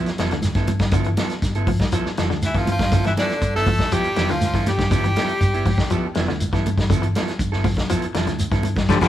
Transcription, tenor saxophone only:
2.46 2.59 E4 medium
2.58 2.69 F4 medium
2.71 3.04 F4 loud
3.07 3.12 E4 medium
3.18 3.53 D4 loud
3.56 3.94 A4 loud
3.93 4.32 G4 loud
4.31 4.67 F4 loud
4.68 6.13 G4 loud

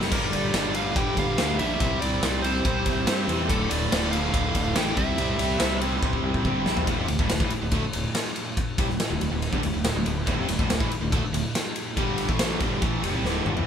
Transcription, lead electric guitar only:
0.12 0.34 A#4 loud
0.33 0.72 D5 medium
0.75 0.95 F5 medium
0.96 1.18 G5 loud
1.19 1.57 F5 loud
1.59 1.98 E5 medium
2.01 2.40 D5 medium
2.42 3.23 C5 medium
3.48 3.70 A4 medium
3.69 4.11 D5 medium
4.11 4.77 F5 loud
4.76 4.98 G5 loud
4.97 5.78 E5 medium

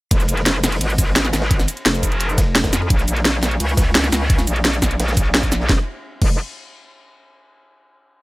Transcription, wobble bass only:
0.11 0.27 F1 loud
0.29 0.80 F1 loud
0.81 1.32 G#1 loud
1.33 1.67 G#1 loud
1.86 2.71 F1 loud
2.73 2.89 F2 loud
2.90 3.06 A#1 loud
3.08 3.59 A#1 loud
3.60 4.11 C#2 loud
4.12 4.46 C#2 loud
4.47 5.33 A#1 loud
5.34 5.68 A#1 loud
5.69 5.79 F1 loud
6.22 6.38 F1 medium

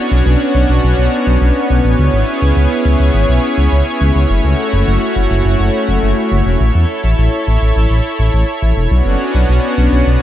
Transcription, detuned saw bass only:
0.12 0.22 B1 medium
0.26 0.36 B1 loud
0.55 0.65 B1 medium
0.69 0.79 B1 medium
0.84 0.94 B1 loud
0.98 1.08 B1 medium
1.27 1.37 B1 medium
1.41 1.51 B1 loud
1.70 1.80 B1 medium
1.85 1.95 A1 medium
1.99 2.09 C#2 loud
2.13 2.24 G#1 medium
2.42 2.52 C#2 medium
2.57 2.67 C#2 loud
2.85 2.96 C#2 medium
3.00 3.10 C#2 medium
3.14 3.25 G#1 loud
3.29 3.39 B1 medium
3.58 3.68 C#2 medium
3.72 3.82 C#2 loud
4.01 4.11 C#2 medium
4.15 4.26 C#2 medium
4.30 4.40 F#1 loud
4.44 4.54 C#2 medium
4.73 4.83 F#1 medium
4.88 4.98 F#1 loud
5.16 5.27 F#1 medium
5.31 5.41 F#1 medium
5.45 5.55 F#1 loud
5.60 5.70 F#1 medium
5.89 5.99 F#1 medium
6.03 6.13 F#1 loud
6.32 6.42 F#1 medium
6.46 6.56 E1 medium
6.61 6.71 A1 loud
6.75 6.85 E2 medium
7.04 7.14 A1 medium
7.18 7.28 A1 loud
7.47 7.57 A1 medium
7.62 7.72 A1 medium
7.76 7.86 A1 loud
7.90 8.01 A1 medium
8.19 8.29 A1 medium
8.34 8.44 A1 loud
8.63 8.73 A1 loud
8.77 8.87 E1 medium
8.91 9.01 B1 loud
9.06 9.16 F#1 medium
9.35 9.45 B1 medium
9.49 9.59 B1 loud
9.78 9.88 B1 medium
9.92 10.02 B1 medium
10.07 10.17 B1 loud

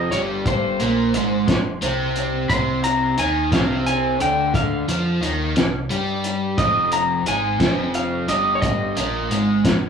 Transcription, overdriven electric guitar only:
0.00 0.11 F2 medium
0.00 0.11 F3 medium
0.12 0.79 G2 medium
0.12 0.79 G3 medium
0.80 1.13 A#2 medium
0.80 1.14 A#3 medium
1.14 1.47 G#2 medium
1.14 1.47 G#3 medium
1.48 1.75 F2 medium
1.81 2.48 C3 medium
1.81 2.49 C4 loud
2.49 3.17 C3 medium
2.49 3.17 C4 medium
3.18 3.51 D#3 medium
3.18 3.51 D#4 loud
3.52 4.20 C3 medium
3.52 4.21 C4 medium
4.20 4.87 D3 medium
4.20 4.87 D4 medium
4.88 5.21 F3 medium
4.88 5.22 F4 loud
5.22 5.55 D#3 medium
5.22 5.55 D#4 medium
5.57 5.84 C3 medium
5.90 6.57 G3 medium
5.90 6.57 G4 loud
6.58 7.25 F2 medium
6.58 7.25 F3 medium
7.26 7.59 G#2 medium
7.26 7.59 G#3 medium
7.60 8.27 F2 medium
7.60 8.27 F3 medium
8.28 8.95 G2 medium
8.28 8.96 G3 medium
8.96 9.29 A#2 medium
8.96 9.30 A#3 medium
9.30 9.63 G#2 medium
9.30 9.64 G#3 medium
9.65 9.89 F2 medium

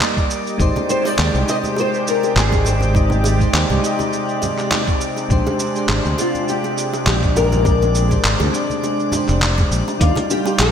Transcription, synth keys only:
0.00 0.61 A#3 medium
0.00 0.59 D#4 medium
0.00 0.60 G4 medium
0.00 0.61 D5 medium
0.00 0.61 D#5 medium
0.58 1.00 G#3 medium
0.58 1.01 D#4 medium
0.58 1.01 G4 medium
0.58 1.02 C5 loud
1.02 1.42 G#3 medium
1.02 1.44 D#4 medium
1.02 1.44 G4 medium
1.06 1.45 C5 medium
1.43 2.89 G#3 medium
1.43 2.91 D#4 medium
1.48 2.92 G4 medium
1.48 2.93 C5 medium
2.93 3.35 G#3 medium
2.93 3.36 D#4 medium
2.93 3.37 G4 medium
2.93 3.37 D#5 medium
3.39 3.77 G#3 medium
3.39 3.80 D#4 medium
3.39 3.80 G4 medium
3.39 3.81 C5 medium
3.78 5.25 G#3 medium
3.78 5.26 D#4 medium
3.84 5.27 G4 medium
3.84 5.29 D#5 medium
5.29 5.71 G#3 medium
5.29 5.72 D4 medium
5.29 5.72 G4 medium
5.29 5.73 C5 loud
5.74 6.13 G#3 medium
5.74 6.15 D4 medium
5.74 6.16 G4 medium
5.78 6.16 C5 medium
6.14 7.60 G#3 medium
6.14 7.61 D4 medium
6.19 7.63 G4 medium
6.19 7.64 C5 medium
7.63 8.06 G#3 medium
7.63 8.07 D4 medium
7.63 8.07 G4 medium
7.67 8.08 D5 medium
8.09 8.49 G#3 medium
8.09 8.50 D4 medium
8.09 8.51 G4 medium
8.09 8.51 C5 medium
8.52 9.08 G#3 medium
8.52 9.10 D4 medium
8.52 9.10 G4 medium
8.52 9.11 D5 medium
9.09 9.96 G#3 medium
9.09 9.97 D4 medium
9.14 9.98 G4 medium
9.14 10.00 C5 medium
9.98 10.41 G3 medium
9.98 10.42 D#4 medium
9.98 10.42 F4 medium
10.02 10.43 D5 loud
10.44 10.72 G3 medium
10.44 10.72 D#4 medium
10.44 10.72 F4 medium
10.48 10.72 D5 medium

